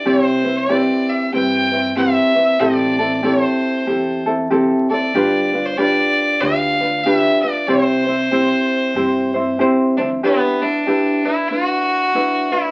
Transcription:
0.05 0.89 C2 medium
0.05 0.45 C4 medium
0.05 0.44 E4 medium
0.05 0.45 G4 medium
0.05 0.24 C#5 medium
0.24 0.58 C5 medium
0.44 0.69 C4 soft
0.44 0.69 E4 soft
0.44 0.69 B4 medium
0.57 0.74 C#5 loud
0.69 1.33 C4 medium
0.69 1.33 E4 medium
0.69 1.32 G4 medium
0.69 1.34 B4 medium
0.74 1.11 D5 loud
1.10 1.33 E5 medium
1.33 2.16 G2 medium
1.33 1.72 C4 medium
1.33 1.71 E4 medium
1.33 1.72 G4 medium
1.33 1.70 B4 medium
1.33 1.93 G5 loud
1.71 1.95 C4 soft
1.71 1.96 E4 medium
1.71 1.96 B4 soft
1.96 2.36 C4 medium
1.96 2.35 E4 medium
1.96 2.35 G4 medium
1.96 2.34 B4 medium
1.96 2.61 E5 medium
2.35 2.59 C4 soft
2.35 2.59 E4 medium
2.35 2.60 B4 soft
2.60 3.43 A1 medium
2.60 2.99 C4 medium
2.60 2.99 E4 medium
2.60 2.99 G4 medium
2.60 2.97 A4 medium
2.60 3.28 D5 loud
2.98 3.22 C4 soft
2.98 3.23 E4 soft
2.98 3.23 A4 medium
3.23 3.87 C4 medium
3.23 3.87 E4 medium
3.23 3.87 G4 medium
3.23 3.88 A4 medium
3.23 3.43 C#5 medium
3.43 4.27 C5 medium
3.87 4.70 E2 loud
3.87 4.26 C4 medium
3.87 4.26 E4 medium
3.87 4.26 G4 medium
3.87 4.25 A4 medium
4.26 4.50 C4 medium
4.26 4.50 E4 medium
4.26 4.51 A4 medium
4.50 4.90 C4 medium
4.50 4.89 E4 medium
4.50 4.89 G4 medium
4.50 4.89 A4 medium
4.90 5.15 C4 soft
4.90 5.15 E4 soft
4.90 5.14 A4 medium
4.90 5.67 D5 medium
5.14 5.97 G1 medium
5.14 5.54 D4 medium
5.14 5.53 F4 medium
5.14 5.53 G4 medium
5.14 5.52 B4 medium
5.53 5.77 D4 soft
5.53 5.78 F4 medium
5.53 5.78 B4 medium
5.66 5.79 C5 medium
5.77 6.41 D4 medium
5.77 6.42 F4 medium
5.77 6.41 G4 medium
5.77 6.42 B4 medium
5.77 6.42 D5 loud
6.41 7.23 D2 medium
6.41 6.81 D4 medium
6.41 6.80 F4 medium
6.41 6.80 G4 medium
6.41 6.79 B4 medium
6.41 7.05 F5 loud
6.81 7.05 D4 soft
6.81 7.05 F4 medium
6.81 7.05 B4 medium
7.03 7.44 D4 medium
7.03 7.43 F4 medium
7.03 7.44 G4 medium
7.03 7.42 B4 medium
7.03 7.41 E5 loud
7.42 7.68 D4 soft
7.42 7.69 F4 medium
7.42 7.68 B4 medium
7.42 7.69 D5 medium
7.67 8.51 C2 medium
7.67 8.07 C4 medium
7.67 8.06 E4 medium
7.67 8.07 G4 medium
7.67 9.58 C5 loud
7.67 8.05 C5 medium
8.06 8.31 C4 soft
8.06 8.31 E4 medium
8.06 8.31 C5 medium
8.31 8.95 C4 medium
8.31 8.97 E4 medium
8.31 8.96 G4 medium
8.31 8.96 C5 loud
8.94 9.61 G2 medium
8.94 9.35 C4 medium
8.94 9.34 E4 medium
8.94 9.35 G4 medium
8.94 9.33 C5 medium
9.34 9.59 C4 soft
9.34 9.59 E4 medium
9.34 9.59 C5 medium
9.59 9.98 C4 medium
9.59 9.98 E4 medium
9.59 9.98 G4 medium
9.59 9.97 C5 loud
9.97 10.09 D2 medium
9.97 10.23 C4 soft
9.97 10.08 D4 medium
9.97 10.23 E4 soft
9.97 10.23 C5 medium
10.10 10.21 E2 medium
10.23 10.63 B3 loud
10.23 10.62 D4 medium
10.23 10.61 E4 medium
10.23 10.62 G4 medium
10.23 10.60 B4 medium
10.61 11.27 D4 loud
10.61 10.86 D4 soft
10.61 10.86 E4 medium
10.61 10.86 B4 soft
10.87 11.25 D4 medium
10.87 11.25 E4 medium
10.87 11.25 G4 medium
10.87 11.24 B4 medium
11.25 11.49 D4 soft
11.25 11.50 E4 medium
11.25 11.50 E4 soft
11.25 11.50 B4 medium
11.48 12.13 D4 medium
11.48 12.14 E4 medium
11.48 11.65 F4 loud
11.48 12.14 B4 medium
11.65 12.54 F#4 loud
12.14 12.53 D4 medium
12.14 12.52 E4 medium
12.14 12.50 B4 medium
12.52 12.71 D4 soft
12.52 12.71 E4 medium
12.52 12.71 E4 soft
12.52 12.71 B4 soft

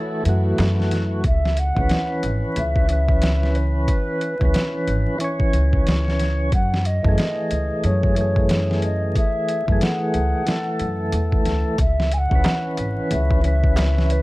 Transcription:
0.00 0.22 E3 medium
0.00 0.23 A3 medium
0.00 1.20 E4 medium
0.00 1.20 F#4 medium
0.00 0.24 A4 medium
0.00 0.22 C#5 medium
0.23 0.55 F#2 medium
0.23 1.22 E3 medium
0.23 1.23 A3 medium
0.23 closed hi-hat medium
0.29 1.24 F#4 medium
0.58 1.22 F#2 medium
0.58 snare loud
0.58 closed hi-hat medium
0.58 darbuka tek medium
0.80 snare soft
0.91 snare soft
0.91 closed hi-hat medium
1.24 1.73 C#2 medium
1.24 1.60 E5 loud
1.24 kick loud
1.24 closed hi-hat medium
1.45 snare medium
1.57 2.24 F#5 loud
1.57 closed hi-hat medium
1.75 1.88 C#2 loud
1.75 2.85 E3 medium
1.75 2.86 C#4 medium
1.75 kick medium
1.81 2.88 B4 medium
1.90 snare loud
1.90 closed hi-hat medium
2.23 2.41 G#1 medium
2.23 closed hi-hat medium
2.56 3.85 C#2 loud
2.56 3.58 E5 loud
2.56 closed hi-hat medium
2.76 kick medium
2.87 4.35 E3 medium
2.87 4.36 C#4 medium
2.87 closed hi-hat medium
2.93 4.38 B4 medium
3.09 kick medium
3.22 snare loud
3.22 closed hi-hat medium
3.43 snare soft
3.55 4.88 B4 loud
3.55 closed hi-hat medium
3.88 kick loud
3.88 closed hi-hat medium
4.21 closed hi-hat medium
4.39 4.53 C#2 loud
4.39 5.16 E3 medium
4.39 5.17 C#4 medium
4.39 kick medium
4.45 5.19 B4 medium
4.54 snare loud
4.54 closed hi-hat medium
4.87 5.05 G#1 medium
4.87 closed hi-hat medium
5.19 6.50 E3 medium
5.19 6.51 C#4 medium
5.19 closed hi-hat medium
5.24 6.52 C#5 medium
5.40 kick medium
5.53 5.83 C#2 medium
5.53 closed hi-hat medium
5.73 kick medium
5.86 6.49 C#2 medium
5.86 snare loud
5.86 closed hi-hat medium
6.08 snare soft
6.19 snare soft
6.19 closed hi-hat medium
6.52 7.01 F#2 medium
6.52 6.88 F#5 loud
6.52 kick loud
6.52 closed hi-hat medium
6.74 snare medium
6.85 7.87 D#5 loud
6.85 closed hi-hat medium
7.03 7.16 F#2 loud
7.03 8.13 E3 medium
7.03 8.14 A3 medium
7.03 kick medium
7.09 8.16 G#4 medium
7.18 snare loud
7.18 closed hi-hat medium
7.51 7.68 C#2 medium
7.51 closed hi-hat medium
7.84 9.13 F#2 loud
7.84 8.84 C#5 loud
7.84 closed hi-hat medium
8.03 kick medium
8.15 9.63 E3 medium
8.15 9.64 A3 medium
8.15 closed hi-hat medium
8.21 9.66 G#4 medium
8.36 kick medium
8.49 snare loud
8.49 closed hi-hat medium
8.71 snare soft
8.82 9.14 D#5 medium
8.82 closed hi-hat medium
9.15 9.85 E5 loud
9.15 kick loud
9.15 closed hi-hat medium
9.48 closed hi-hat medium
9.66 9.80 F#2 medium
9.66 10.43 E3 medium
9.66 10.45 A3 medium
9.66 kick medium
9.72 10.46 G#4 loud
9.81 11.14 F#5 loud
9.81 snare loud
9.81 closed hi-hat medium
10.14 10.32 C#2 medium
10.14 closed hi-hat medium
10.45 11.77 E3 medium
10.45 11.78 A3 medium
10.45 snare loud
10.45 closed hi-hat medium
10.51 11.79 A4 medium
10.80 11.10 F#2 medium
10.80 closed hi-hat medium
11.13 11.46 E2 medium
11.13 closed hi-hat medium
11.33 kick medium
11.46 11.64 C#2 medium
11.46 snare soft
11.46 closed hi-hat medium
11.79 12.28 C#2 medium
11.79 12.15 E5 loud
11.79 kick loud
11.79 closed hi-hat medium
12.00 snare medium
12.12 12.19 G#5 loud
12.12 closed hi-hat medium
12.18 12.79 F#5 loud
12.30 12.43 C#2 medium
12.30 13.40 E3 medium
12.30 13.41 C#4 medium
12.30 kick medium
12.36 13.43 B4 medium
12.44 snare loud
12.44 closed hi-hat medium
12.44 darbuka tek medium
12.78 12.96 G#1 medium
12.78 closed hi-hat medium
13.11 14.22 C#2 loud
13.11 14.13 E5 loud
13.11 closed hi-hat medium
13.30 kick medium
13.42 14.22 E3 medium
13.42 14.22 C#4 medium
13.42 closed hi-hat medium
13.47 14.22 B4 medium
13.64 kick medium
13.76 snare loud
13.76 closed hi-hat medium
13.76 darbuka tek medium
13.98 snare soft
14.10 14.22 B4 loud
14.10 closed hi-hat medium

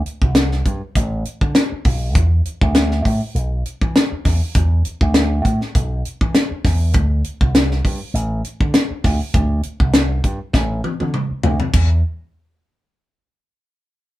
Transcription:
0.06 closed hi-hat medium
0.22 0.61 C2 medium
0.22 kick medium
0.35 snare loud
0.35 closed hi-hat medium
0.52 snare soft
0.65 0.80 G2 medium
0.65 kick medium
0.65 closed hi-hat medium
0.95 1.23 A1 medium
0.95 kick medium
0.95 closed hi-hat medium
1.25 closed hi-hat medium
1.41 1.54 D3 loud
1.41 kick medium
1.55 snare loud
1.55 closed hi-hat medium
1.72 muted slap bass stroke soft
1.85 2.15 B1 medium
1.85 kick medium
1.85 open hi-hat medium
2.15 2.43 E2 medium
2.15 kick loud
2.15 closed hi-hat medium
2.45 muted slap bass stroke soft
2.45 closed hi-hat medium
2.61 3.01 D2 medium
2.61 kick medium
2.75 snare loud
2.75 closed hi-hat medium
2.91 snare soft
3.05 3.20 A2 medium
3.05 kick medium
3.05 open hi-hat medium
3.35 3.62 B1 medium
3.35 closed hi-hat medium
3.65 muted slap bass stroke soft
3.65 closed hi-hat medium
3.81 3.94 E3 medium
3.81 kick medium
3.96 snare loud
3.96 closed hi-hat medium
4.12 muted slap bass stroke soft
4.25 4.40 E2 medium
4.25 kick medium
4.25 snare soft
4.25 open hi-hat medium
4.55 4.82 E2 medium
4.55 kick loud
4.55 closed hi-hat medium
4.85 muted slap bass stroke soft
4.85 closed hi-hat medium
5.01 5.41 D2 medium
5.01 kick medium
5.14 snare loud
5.14 closed hi-hat medium
5.45 5.60 A2 medium
5.45 kick medium
5.45 closed hi-hat medium
5.61 snare soft
5.75 6.02 B1 loud
5.75 kick medium
5.75 closed hi-hat medium
6.05 closed hi-hat medium
6.21 6.34 E3 loud
6.21 kick medium
6.35 snare loud
6.35 closed hi-hat medium
6.51 muted slap bass stroke soft
6.64 6.94 E2 loud
6.64 kick medium
6.64 snare soft
6.64 open hi-hat medium
6.93 7.21 D2 medium
6.93 kick loud
6.93 closed hi-hat medium
7.24 muted slap bass stroke soft
7.24 closed hi-hat medium
7.41 7.80 C2 medium
7.41 kick medium
7.55 snare loud
7.55 closed hi-hat medium
7.71 snare soft
7.85 7.99 G2 medium
7.85 kick medium
7.85 open hi-hat medium
8.14 8.41 A1 loud
8.14 closed hi-hat medium
8.45 closed hi-hat medium
8.60 8.73 D3 loud
8.60 kick medium
8.74 snare loud
8.74 closed hi-hat medium
8.90 muted slap bass stroke soft
9.04 9.19 D2 loud
9.04 kick medium
9.04 snare soft
9.04 open hi-hat medium
9.34 9.61 D2 medium
9.34 kick loud
9.34 closed hi-hat medium
9.63 closed hi-hat medium
9.80 10.19 C2 medium
9.80 kick medium
9.94 snare loud
9.94 closed hi-hat medium
10.24 10.39 G2 medium
10.24 kick medium
10.24 closed hi-hat medium
10.53 10.80 A1 loud
10.53 kick medium
10.53 snare medium
10.84 high tom medium
11.00 11.13 D3 loud
11.00 high tom medium
11.14 mid tom medium
11.31 muted slap bass stroke soft
11.43 11.58 D2 medium
11.43 floor tom loud
11.60 floor tom medium
11.74 12.01 E2 medium
11.74 kick loud
11.74 crash medium

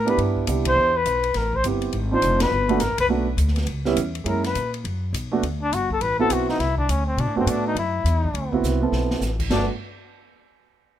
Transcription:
0.00 0.17 A2 medium
0.00 0.11 A#4 medium
0.05 0.44 B3 medium
0.05 0.44 D4 medium
0.05 0.45 E4 medium
0.05 0.45 G4 medium
0.05 ride soft
0.10 0.19 B4 medium
0.18 0.46 G2 medium
0.18 ride medium
0.37 kick soft
0.47 0.75 C2 medium
0.47 0.90 B3 soft
0.47 0.90 D4 soft
0.47 0.91 E4 soft
0.47 0.91 G4 medium
0.47 hi-hat pedal medium
0.47 ride medium
0.65 0.98 C5 loud
0.65 kick medium
0.65 ride medium
0.76 1.04 E2 medium
0.96 1.38 B4 medium
1.06 1.34 B1 medium
1.06 hi-hat pedal soft
1.06 ride medium
1.23 ride soft
1.34 1.63 A1 medium
1.34 1.57 A#4 medium
1.34 snare soft
1.34 ride medium
1.53 1.65 C5 medium
1.53 kick soft
1.64 1.92 G1 medium
1.64 1.93 B3 soft
1.64 1.93 C4 soft
1.64 1.94 E4 soft
1.64 1.94 G4 medium
1.64 hi-hat pedal medium
1.64 ride medium
1.82 ride soft
1.93 2.21 G#1 medium
1.93 ride soft
2.11 2.49 C4 medium
2.11 2.49 D4 medium
2.11 2.50 D#4 medium
2.11 2.50 F4 medium
2.11 2.39 C5 medium
2.22 2.50 F1 medium
2.22 hi-hat pedal medium
2.22 ride medium
2.40 2.83 B4 medium
2.40 snare medium
2.40 ride medium
2.51 2.79 G1 medium
2.69 2.79 A3 medium
2.69 2.79 B3 medium
2.69 2.79 D4 medium
2.69 2.80 F#4 medium
2.69 ride soft
2.80 2.91 A1 medium
2.80 2.99 A#4 medium
2.80 snare soft
2.80 hi-hat pedal medium
2.80 ride medium
2.89 2.98 G1 soft
2.98 3.07 F#1 medium
2.98 3.06 B4 loud
2.98 kick soft
2.98 ride medium
3.08 3.36 B1 medium
3.08 3.25 A3 medium
3.08 3.25 B3 medium
3.08 3.26 D4 medium
3.08 3.26 F#4 medium
3.37 3.66 D2 medium
3.37 hi-hat pedal soft
3.37 ride medium
3.48 snare soft
3.56 snare soft
3.56 ride soft
3.67 3.95 C#2 medium
3.67 ride medium
3.85 3.95 G3 medium
3.85 3.96 B3 medium
3.85 3.96 C#4 medium
3.85 3.96 E4 medium
3.85 snare medium
3.96 4.25 E2 medium
3.96 hi-hat pedal medium
3.96 ride medium
4.15 ride soft
4.24 4.54 F#2 medium
4.24 4.41 G#3 soft
4.24 4.42 A#3 soft
4.24 4.42 C#4 soft
4.24 4.42 E4 medium
4.24 4.44 A#4 medium
4.24 ride medium
4.44 4.72 B4 medium
4.44 snare soft
4.44 ride soft
4.55 4.83 A#2 medium
4.55 hi-hat pedal soft
4.55 ride medium
4.74 ride soft
4.84 5.12 F#2 medium
4.84 ride medium
5.13 5.41 B1 medium
5.13 hi-hat pedal soft
5.13 ride medium
5.32 5.41 A3 medium
5.32 5.41 B3 medium
5.32 5.42 D4 medium
5.32 5.42 F#4 medium
5.42 5.71 D2 medium
5.42 ride medium
5.62 5.75 D4 medium
5.71 6.00 G1 medium
5.71 5.91 F#4 medium
5.71 hi-hat pedal soft
5.71 ride medium
5.91 6.03 A4 medium
5.91 kick soft
6.01 6.29 A1 medium
6.01 6.19 B4 medium
6.01 ride medium
6.19 6.57 B3 medium
6.19 6.57 C4 medium
6.19 6.57 E4 medium
6.19 6.58 F#4 medium
6.19 6.34 A4 medium
6.30 6.58 B1 medium
6.30 6.49 F#4 medium
6.30 hi-hat pedal medium
6.30 ride medium
6.49 6.62 D#4 medium
6.49 snare soft
6.59 6.87 C2 medium
6.59 6.77 E4 medium
6.59 snare soft
6.59 ride medium
6.78 6.92 D4 medium
6.78 kick medium
6.89 7.17 D2 medium
6.89 7.06 C#4 medium
6.89 hi-hat pedal soft
6.89 ride medium
7.07 7.21 C4 medium
7.17 7.27 B2 medium
7.17 7.37 D4 medium
7.17 ride medium
7.27 7.36 A2 medium
7.36 7.46 F#2 medium
7.36 7.74 A3 medium
7.36 7.74 B3 medium
7.36 7.50 C4 medium
7.36 7.74 D4 medium
7.36 7.74 F#4 medium
7.46 7.75 A2 medium
7.46 7.66 D4 medium
7.46 hi-hat pedal medium
7.46 ride medium
7.67 7.76 D#4 medium
7.75 8.04 F#2 medium
7.75 8.60 E4 medium
7.75 ride medium
8.04 8.33 E2 medium
8.04 hi-hat pedal medium
8.04 ride soft
8.24 kick soft
8.34 8.62 D2 medium
8.34 ride medium
8.52 8.79 B3 medium
8.52 8.80 C4 medium
8.52 8.80 E4 medium
8.52 8.80 F#4 medium
8.52 kick soft
8.63 8.91 C2 medium
8.63 snare soft
8.63 hi-hat pedal medium
8.81 9.19 B3 medium
8.81 9.19 C4 medium
8.81 9.20 E4 medium
8.81 9.20 A4 medium
8.92 9.20 B1 medium
8.92 snare medium
9.11 snare medium
9.21 9.49 A1 medium
9.21 snare soft
9.21 hi-hat pedal medium
9.40 kick medium
9.40 crash medium
9.50 9.67 G1 medium
9.50 9.67 A3 medium
9.50 9.67 B3 medium
9.50 9.67 D4 soft
9.50 9.68 D4 medium
9.50 9.67 F#4 medium
9.50 snare medium
9.50 china medium

